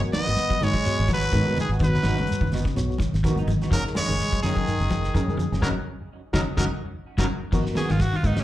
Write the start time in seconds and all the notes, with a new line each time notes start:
Already playing: B3 F#4 A#4
0.04 muted clean electric guitar stroke, shekere
0.13 D#3 B3 D#4 F#4 D#5, muted fingered electric bass stroke, snare, closed hi-hat, high conga, shekere
0.27 G#1 D#3, muted clean electric guitar stroke, closed hi-hat, shekere
0.36 muted clean electric guitar stroke, snare, closed hi-hat, high conga, shekere
0.50 F#3, muted fingered electric bass stroke, muted clean electric guitar stroke, kick, closed hi-hat, shekere
0.60 G#2 D#3 G#3 D#4 F#4 C#5, muted clean electric guitar stroke, open hi-hat, low conga, shekere
0.73 F#3, muted clean electric guitar stroke, kick, closed hi-hat, shekere
0.83 B3 F#4 C#5, muted clean electric guitar stroke, snare, closed hi-hat, shekere
0.96 G#1, muted clean electric guitar stroke, closed hi-hat, shekere
1.07 F3 F#3, muted clean electric guitar stroke, kick, snare, closed hi-hat, high conga, shekere
1.14 B4
1.21 snare, closed hi-hat, shekere
1.31 G#2 D#3 B3 D#4 F#4 A#4, kick, snare, closed hi-hat, shekere
1.46 D#3 B3 D#4, muted clean electric guitar stroke, high conga, shekere
1.57 D#3 F3, closed hi-hat, high conga, low conga, shekere
1.61 G#4
1.69 G#1 B3 D#4 F#4, closed hi-hat, shekere
1.79 D#3 B3 F#4 B4, kick, closed hi-hat, shekere
1.84 F#3 B4
1.94 muted clean electric guitar stroke, snare, low conga, shekere
2.03 G#1 D#3 B3 D#4 F#4, snare, closed hi-hat, high conga
2.08 shekere
2.17 C#3, snare, closed hi-hat, high conga
2.22 shekere
2.27 muted clean electric guitar stroke, closed hi-hat, high conga
2.32 shekere
2.41 F#1 D#3, muted clean electric guitar stroke, kick, closed hi-hat
2.47 shekere
2.52 D#3 B3 D#4 F#4, snare, open hi-hat, low conga
2.56 shekere
2.65 C#3, muted clean electric guitar stroke, kick, snare, closed hi-hat
2.69 shekere
2.76 B1 B3 F#4 C#5, muted clean electric guitar stroke, snare, closed hi-hat, shekere
2.90 muted clean electric guitar stroke, shekere
2.98 D#3, muted clean electric guitar stroke, kick, snare, closed hi-hat, high conga, shekere
3.13 G#1, snare, closed hi-hat, shekere
3.24 D#3 F3 B3 D#4 F#4 A#4, kick, closed hi-hat, shekere
3.36 D#3 D#4, muted clean electric guitar stroke, closed hi-hat, high conga, shekere
3.48 G#1 F#3, closed hi-hat, low conga, shekere
3.61 B3 D#4 F#4, snare, closed hi-hat, shekere
3.71 F#1 D#3 F3 F#3 A#3 C#4 D#4 G#4 A#4, kick, closed hi-hat, shekere
3.87 muted clean electric guitar stroke, snare, shekere
3.95 D#3 G#3 A#3 C#4 G#4 C#5, muted fingered electric bass stroke, snare, closed hi-hat, high conga, shekere
4.08 F#1 D#3, muted clean electric guitar stroke, snare, shekere
4.18 muted clean electric guitar stroke, snare, closed hi-hat, high conga, shekere
4.32 F#3, muted fingered electric bass stroke, muted clean electric guitar stroke, kick, closed hi-hat, shekere
4.42 F#2 D#3 A#3 G#4, open hi-hat, low conga, shekere
4.47 C#4 G#4
4.56 F#3, muted clean electric guitar stroke, kick, closed hi-hat, shekere
4.67 D#4 G#4 A#4, muted clean electric guitar stroke, closed hi-hat, shekere
4.80 F#1, muted clean electric guitar stroke, closed hi-hat, shekere
4.89 F3, muted clean electric guitar stroke, kick, snare, closed hi-hat, high conga, shekere
5.04 snare, closed hi-hat, shekere
5.14 F#2 D#3 A#3 C#4 D#4 G#4 A#4, kick, closed hi-hat, shekere
5.28 D#3 C#4 G#4, high conga, shekere
5.37 F3, closed hi-hat, low conga, shekere
5.52 F#1 A#3 C#4 G#4, snare, closed hi-hat, shekere
5.61 F#1 C#3 D#3 F#3 C#4 D#4 F#4 A#4, kick, snare, high conga, shekere
6.33 F#1 C#3 D#3 F#3 C#4 D#4 F#4 A#4, kick, snare, high conga, shekere
6.57 F#1 C#3 D#3 F#3 C#4 D#4 F#4 A#4, kick, snare, high conga, shekere
7.18 F#1 C#3 D#3 F#3 C#4 D#4 F#4 A#4, kick, snare, high conga, shekere
7.52 G#1 F3 B3 D#4 F#4 A#4, muted clean electric guitar stroke, kick, crash, shekere
7.66 muted clean electric guitar stroke, snare, shekere
7.75 D#3 B3 F#4 G#4, muted fingered electric bass stroke, muted clean electric guitar stroke, snare, ride bell, high conga, shekere
7.89 G#1 D#3 F4, muted clean electric guitar stroke, snare, ride bell, high conga, shekere
7.99 F#4, muted clean electric guitar stroke, kick, snare, ride bell, high conga, shekere
8.13 D#3 F4, muted fingered electric bass stroke, muted clean electric guitar stroke, shekere
8.23 G#2 D#3 B3 D#4, kick, ride bell, low conga, shekere
8.27 F#4
8.37 C#3, muted clean electric guitar stroke, snare, ride bell, shekere
8.41 C#4